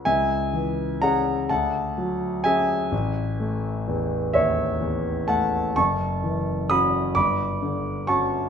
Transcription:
0.05 1.47 C#2 medium
0.05 0.98 E5 medium
0.05 1.02 G#5 medium
0.53 1.31 E3 soft
1.02 1.47 C#4 soft
1.02 1.47 G#4 soft
1.02 1.47 F#5 medium
1.02 1.50 A#5 medium
1.49 2.88 D2 soft
1.49 2.40 F#5 medium
1.49 2.44 A5 medium
1.98 2.73 F#3 soft
2.44 2.88 C#4 soft
2.44 2.89 G#4 soft
2.44 4.31 E5 medium
2.44 4.34 G#5 medium
2.92 5.73 A1 medium
3.40 4.16 A3 soft
3.88 4.63 E2 soft
4.33 4.82 D#2 soft
4.33 5.25 C#5 medium
4.33 5.29 E5 medium
4.81 5.58 E2 soft
5.28 5.77 A3 soft
5.28 5.74 F#5 medium
5.28 5.75 A5 medium
5.76 7.11 F#1 soft
5.76 6.66 A5 medium
5.76 6.69 C#6 medium
6.24 6.97 E3 soft
6.70 7.12 C#4 soft
6.70 7.12 F#4 soft
6.70 7.13 B5 medium
6.70 7.15 D#6 medium
7.15 8.49 G1 soft
7.15 8.04 B5 medium
7.15 8.07 D6 medium
7.62 8.36 D3 soft
8.07 8.49 C#4 soft
8.07 8.49 F#4 soft
8.07 8.49 A5 medium
8.07 8.49 C#6 medium

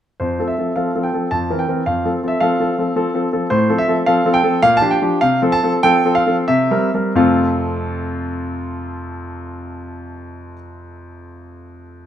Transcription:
0.20 0.38 F2 soft
0.20 0.45 C5 medium
0.39 0.53 F3 soft
0.39 0.53 C4 soft
0.39 0.53 A4 soft
0.48 0.76 E5 soft
0.58 0.71 F3 soft
0.58 0.71 C4 soft
0.58 0.72 A4 soft
0.76 0.90 F3 soft
0.76 0.90 C4 soft
0.76 0.90 A4 soft
0.76 1.04 F5 medium
0.95 1.08 F3 soft
0.95 1.09 C4 soft
0.95 1.09 A4 soft
1.03 1.31 G5 medium
1.13 1.26 F3 soft
1.13 1.27 C4 soft
1.13 1.27 A4 soft
1.31 1.50 F2 medium
1.31 1.59 A5 medium
1.50 1.64 E3 soft
1.50 1.64 C4 soft
1.50 1.64 A#4 soft
1.59 1.84 G5 medium
1.68 1.81 E3 soft
1.68 1.82 C4 soft
1.68 1.82 A#4 soft
1.86 2.04 F2 medium
1.86 2.11 F5 medium
2.05 2.18 F3 soft
2.05 2.18 C4 soft
2.05 2.18 A4 soft
2.23 2.36 F3 soft
2.23 2.37 C4 soft
2.23 2.37 A4 soft
2.28 2.41 E5 medium
2.40 2.54 F3 soft
2.40 2.55 C4 soft
2.40 2.55 A4 medium
2.40 3.19 F5 medium
2.60 2.73 F3 soft
2.60 2.73 C4 soft
2.60 2.73 A4 soft
2.78 2.91 F3 soft
2.78 2.91 C4 soft
2.78 2.92 A4 soft
2.96 3.09 F3 medium
2.96 3.09 C4 soft
2.96 3.09 A4 medium
3.14 3.27 F3 soft
3.14 3.27 C4 soft
3.14 3.28 A4 soft
3.33 3.46 F3 soft
3.33 3.46 C4 soft
3.33 3.46 A4 soft
3.50 3.69 A2 medium
3.50 3.78 C5 medium
3.69 3.82 F3 soft
3.69 3.83 C4 medium
3.69 3.83 A4 medium
3.78 3.95 E5 medium
3.88 4.01 F3 soft
3.88 4.01 C4 soft
3.88 4.02 A4 soft
4.06 4.20 F3 medium
4.06 4.20 C4 medium
4.06 4.20 A4 medium
4.06 4.34 F5 medium
4.26 4.39 F3 medium
4.26 4.39 C4 medium
4.26 4.39 A4 medium
4.34 4.63 G5 medium
4.43 4.57 F3 soft
4.43 4.57 C4 soft
4.43 4.58 A4 medium
4.63 4.82 A#2 medium
4.63 4.77 F5 loud
4.77 4.92 A5 medium
4.81 4.96 F3 medium
4.81 4.96 D4 medium
4.81 4.96 G4 medium
4.91 5.18 G5 medium
5.02 5.16 F3 medium
5.02 5.16 D4 soft
5.02 5.17 G4 medium
5.21 5.42 C3 medium
5.21 5.40 F5 medium
5.42 5.57 F3 medium
5.42 5.57 C4 medium
5.42 5.58 A4 medium
5.52 5.71 A5 loud
5.63 5.78 F3 soft
5.63 5.78 C4 soft
5.63 5.79 A4 medium
5.83 5.99 F3 medium
5.83 5.99 C4 medium
5.83 6.00 A4 medium
5.83 6.12 G5 loud
6.05 6.21 F3 medium
6.05 6.21 C4 medium
6.05 6.21 A4 medium
6.15 6.35 F5 medium
6.26 6.42 F3 soft
6.26 6.43 C4 soft
6.26 6.43 A4 medium
6.48 6.71 C3 medium
6.48 6.90 E5 medium
6.71 6.88 G3 soft
6.71 6.88 C4 soft
6.71 6.88 A#4 medium
6.94 7.11 G3 soft
6.94 7.11 C4 soft
6.94 7.12 A#4 soft
7.15 10.53 F2 medium
7.15 10.54 C3 medium
7.15 10.54 A3 medium
7.15 10.54 C4 medium
7.15 10.54 F4 medium
7.15 10.54 A4 medium
7.15 10.54 F5 medium

